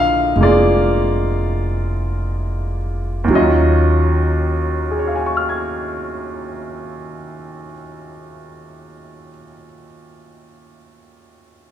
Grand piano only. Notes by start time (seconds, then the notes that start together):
Already playing: D3 F3 G#3 A#3 D#5 F5
0.37 G#3 A#3
0.43 F4 G#4 D5
3.24 D#2 D#3
3.31 F#3 C#4
3.35 F4 D#5
4.91 G#4
4.99 C#5
5.07 F5
5.16 G#5
5.26 C#6
5.37 F6
5.49 G#6